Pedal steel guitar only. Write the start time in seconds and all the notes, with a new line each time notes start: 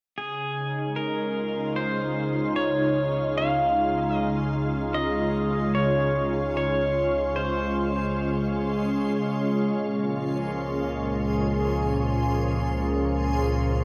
0.18 G#4
0.96 A#4
1.76 C5
2.56 C#5
3.38 F5
4.17 D#5
4.94 D#5
5.75 C#5
6.57 C#5
7.36 C5